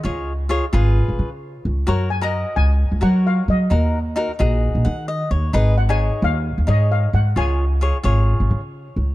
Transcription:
0.00 0.32 F4 medium
0.00 1.60 D#5 medium
0.04 0.59 C#2 medium
0.04 0.32 G#4 medium
0.04 0.32 C#5 medium
0.49 0.64 F4 medium
0.49 0.64 G#4 medium
0.49 0.65 C#5 medium
0.73 1.01 G#1 medium
0.73 1.28 F4 medium
0.73 1.29 G#4 medium
0.73 1.29 B4 medium
1.08 1.17 G#1 medium
1.19 1.55 C#3 medium
1.65 1.83 C#2 medium
1.87 2.42 F#2 medium
1.87 2.08 F#4 medium
1.87 2.08 A#4 medium
1.87 2.09 C#5 medium
2.10 2.23 G#5 medium
2.21 2.70 F#4 medium
2.21 2.70 A#4 medium
2.21 2.71 D#5 medium
2.21 2.57 A#5 medium
2.56 2.84 C#2 medium
2.56 2.99 G#5 medium
2.91 3.00 C#2 medium
3.01 3.38 F#3 medium
3.01 3.43 F#4 medium
3.01 3.43 A#4 medium
3.01 3.44 C#5 medium
3.01 3.26 F#5 medium
3.27 3.47 F5 medium
3.48 3.66 F#3 medium
3.48 5.28 D#5 medium
3.70 4.25 D#2 medium
3.70 3.98 D#4 medium
3.70 3.98 F#4 medium
3.70 3.99 A#4 medium
4.16 4.30 D#4 medium
4.16 4.31 F#4 medium
4.16 4.31 A#4 medium
4.39 4.67 A#1 medium
4.39 4.95 D#4 medium
4.39 4.95 F#4 medium
4.39 4.95 G#4 medium
4.75 4.83 A#1 medium
4.85 5.22 D#3 medium
4.85 5.06 F#5 medium
5.08 5.29 D#5 medium
5.31 5.49 D#2 medium
5.31 5.52 C#5 medium
5.53 6.08 G#1 medium
5.53 5.74 D#4 medium
5.53 5.74 G#4 medium
5.53 5.75 B4 medium
5.78 5.90 F#5 medium
5.89 6.37 D#4 medium
5.89 6.37 G#4 medium
5.89 6.37 C#5 medium
5.89 6.20 G#5 medium
6.22 6.50 D#2 medium
6.22 6.70 F5 medium
6.58 6.66 D#2 medium
6.67 7.04 G#2 medium
6.67 7.09 D#4 medium
6.67 7.09 G#4 medium
6.67 7.10 C#5 medium
6.67 6.92 D#5 medium
6.92 7.12 F5 medium
7.13 7.32 G#2 medium
7.13 7.38 F#5 medium
7.36 7.90 C#2 medium
7.36 7.64 F4 medium
7.36 7.64 G#4 medium
7.36 7.65 C#5 medium
7.36 8.70 G#5 medium
7.81 7.96 F4 medium
7.81 7.96 G#4 medium
7.81 7.97 C#5 medium
8.03 8.32 G#1 medium
8.03 8.60 F4 medium
8.03 8.60 G#4 medium
8.03 8.60 C#5 medium
8.40 8.48 G#1 medium
8.50 8.87 C#3 medium
8.96 9.14 C#2 medium

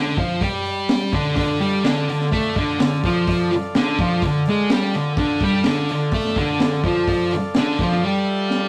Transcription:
0.00 0.17 D3 medium
0.00 0.17 D4 loud
0.17 0.41 F3 medium
0.17 0.41 F4 medium
0.17 kick medium
0.17 open hi-hat soft
0.41 1.12 G3 medium
0.41 1.13 G4 medium
0.41 kick loud
0.41 open hi-hat medium
0.65 open hi-hat medium
0.89 snare loud
0.89 open hi-hat medium
1.13 1.35 D3 medium
1.13 1.36 D4 medium
1.13 kick loud
1.13 open hi-hat medium
1.34 1.59 D3 medium
1.34 1.60 D4 loud
1.34 5.13 F4 medium
1.34 5.13 A4 medium
1.34 5.13 D5 medium
1.34 kick loud
1.34 open hi-hat medium
1.59 1.83 G3 medium
1.59 1.84 G4 medium
1.59 open hi-hat medium
1.83 2.07 D3 medium
1.83 2.08 D4 loud
1.83 snare loud
1.83 open hi-hat medium
2.09 2.28 D3 medium
2.09 open hi-hat medium
2.21 snare soft
2.31 2.55 A3 medium
2.31 2.56 A4 medium
2.31 kick loud
2.31 open hi-hat medium
2.56 2.79 D3 medium
2.56 2.80 D4 loud
2.56 kick loud
2.56 open hi-hat medium
2.80 2.99 D3 medium
2.80 snare loud
2.80 open hi-hat medium
3.04 3.51 F3 medium
3.04 3.52 F4 medium
3.04 kick loud
3.04 open hi-hat medium
3.27 kick loud
3.27 open hi-hat medium
3.52 muted distorted electric guitar stroke medium
3.52 open hi-hat medium
3.75 3.99 D3 medium
3.75 3.99 D4 loud
3.75 snare loud
3.75 open hi-hat medium
3.99 4.23 F3 medium
3.99 4.23 F4 loud
3.99 kick loud
3.99 open hi-hat medium
4.22 4.42 D3 medium
4.22 kick medium
4.22 open hi-hat medium
4.45 4.71 G#3 medium
4.45 open hi-hat medium
4.50 4.71 G#4 medium
4.70 4.94 G3 medium
4.70 4.95 G4 medium
4.70 snare loud
4.70 open hi-hat medium
4.94 5.14 D3 medium
4.94 open hi-hat soft
5.16 5.41 D3 medium
5.16 5.42 D4 loud
5.16 8.69 F4 medium
5.16 8.69 A4 medium
5.16 8.69 D5 medium
5.16 kick loud
5.16 open hi-hat medium
5.40 5.65 G3 medium
5.40 5.66 G4 loud
5.40 kick loud
5.40 open hi-hat medium
5.64 5.89 D3 loud
5.64 5.89 D4 loud
5.64 snare loud
5.64 open hi-hat medium
5.89 6.09 D3 medium
5.89 open hi-hat medium
6.12 6.36 A3 medium
6.12 6.37 A4 medium
6.12 kick loud
6.12 open hi-hat medium
6.25 snare soft
6.36 6.60 D3 medium
6.36 6.61 D4 loud
6.36 kick loud
6.36 open hi-hat medium
6.60 6.80 D3 medium
6.60 snare loud
6.60 open hi-hat medium
6.83 7.31 F3 medium
6.83 7.32 F4 medium
6.83 kick medium
6.83 open hi-hat medium
7.07 kick medium
7.07 open hi-hat medium
7.31 muted distorted electric guitar stroke medium
7.31 open hi-hat medium
7.54 7.79 D3 medium
7.54 7.80 D4 loud
7.54 snare loud
7.54 open hi-hat medium
7.79 8.03 F3 medium
7.79 8.04 F4 loud
7.79 kick loud
7.79 open hi-hat medium
7.92 snare soft
8.04 8.69 G3 medium
8.04 8.69 G4 loud
8.25 8.48 E5 medium
8.48 8.69 F5 medium
8.48 snare medium

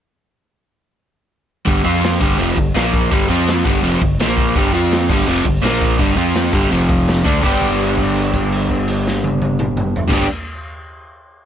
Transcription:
1.65 1.84 G1 medium
1.65 1.84 G2 medium
1.65 1.84 D3 loud
1.65 1.84 G3 loud
1.65 kick loud
1.65 crash medium
1.84 2.19 F2 loud
1.84 2.20 F3 medium
1.84 2.20 C4 loud
1.84 2.21 F4 loud
2.03 snare loud
2.03 crash medium
2.20 2.38 G1 loud
2.20 2.37 G2 medium
2.20 2.38 D3 loud
2.20 2.39 G3 loud
2.20 kick loud
2.37 2.56 F1 loud
2.37 2.55 F2 medium
2.37 2.56 C3 loud
2.37 2.57 F3 loud
2.37 crash medium
2.56 2.74 G1 medium
2.56 2.71 G2 medium
2.56 2.71 D3 medium
2.56 kick loud
2.74 3.09 A#1 loud
2.74 3.10 A#2 medium
2.74 3.11 F3 medium
2.74 3.11 A#3 loud
2.74 snare loud
2.74 crash medium
2.94 kick medium
3.11 3.29 G1 medium
3.11 3.29 G2 medium
3.11 3.28 D3 medium
3.11 3.29 G3 loud
3.11 kick loud
3.11 crash medium
3.29 3.63 F2 loud
3.29 3.65 F3 medium
3.29 3.65 C4 loud
3.29 3.66 F4 loud
3.47 snare loud
3.47 crash medium
3.64 3.82 G1 loud
3.64 3.81 G2 medium
3.64 3.83 D3 loud
3.64 3.83 G3 loud
3.64 kick loud
3.82 4.00 F1 medium
3.82 4.00 F2 medium
3.82 4.01 C3 loud
3.82 4.01 F3 loud
3.82 crash medium
4.01 4.18 G1 medium
4.01 4.16 G2 medium
4.01 4.20 D3 medium
4.01 kick loud
4.18 4.52 A#1 loud
4.18 4.55 A#2 medium
4.18 4.56 F3 loud
4.18 4.56 A#3 loud
4.18 snare loud
4.18 crash medium
4.38 kick medium
4.55 4.72 G1 medium
4.55 4.73 G2 loud
4.55 4.73 D3 loud
4.55 4.74 G3 loud
4.55 kick loud
4.55 crash medium
4.73 5.07 F2 loud
4.73 5.09 F3 medium
4.73 5.10 C4 loud
4.73 5.10 F4 loud
4.91 snare loud
4.91 crash medium
5.09 5.26 G1 loud
5.09 5.26 G2 medium
5.09 5.27 D3 loud
5.09 5.28 G3 loud
5.09 kick loud
5.09 crash loud
5.19 snare soft
5.27 5.44 F1 medium
5.27 5.45 F2 loud
5.27 5.45 C3 loud
5.27 5.46 F3 loud
5.27 crash medium
5.45 5.62 G1 medium
5.45 5.60 G2 medium
5.45 5.60 D3 medium
5.45 kick medium
5.62 5.97 A#1 loud
5.62 5.98 A#2 medium
5.62 5.99 F3 loud
5.62 5.99 A#3 loud
5.62 snare loud
5.62 crash medium
5.81 kick medium
5.98 6.16 G1 medium
5.98 6.17 G2 medium
5.98 6.16 D3 loud
5.98 6.17 G3 loud
5.98 kick loud
5.98 crash medium
6.16 6.51 F2 loud
6.16 6.53 F3 medium
6.16 6.53 C4 medium
6.16 6.54 F4 loud
6.34 snare loud
6.34 crash medium
6.52 6.70 G1 medium
6.52 6.70 G2 medium
6.52 6.71 D3 medium
6.52 6.71 G3 loud
6.52 kick loud
6.64 snare soft
6.70 7.22 F1 medium
6.70 7.25 F2 medium
6.70 7.24 C3 loud
6.70 7.25 F3 loud
6.70 crash medium
6.89 kick medium
7.07 snare loud
7.07 crash medium
7.24 7.43 D2 loud
7.24 7.42 D3 medium
7.24 7.43 A3 medium
7.24 7.43 D4 loud
7.24 kick loud
7.41 10.01 G1 medium
7.41 10.07 G2 medium
7.41 10.08 D3 loud
7.41 10.09 G3 medium
7.41 10.10 B3 medium
7.41 10.11 D4 loud
7.41 kick loud
7.41 crash medium
7.46 10.11 G4 loud
7.62 kick medium
7.62 crash soft
7.80 crash soft
7.98 kick medium
7.98 crash soft
8.15 crash soft
8.34 kick medium
8.34 crash medium
8.52 crash medium
8.70 kick medium
8.70 crash soft
8.88 crash soft
9.07 snare medium
9.24 high tom medium
9.42 high tom medium
9.59 mid tom loud
9.77 mid tom loud
9.96 floor tom loud
10.08 10.24 G1 loud
10.08 10.24 G2 loud
10.08 10.25 D3 loud
10.08 10.26 G3 medium
10.08 10.26 B3 medium
10.08 10.26 D4 loud
10.08 10.26 G4 loud
10.08 kick loud
10.08 snare loud
10.08 crash loud

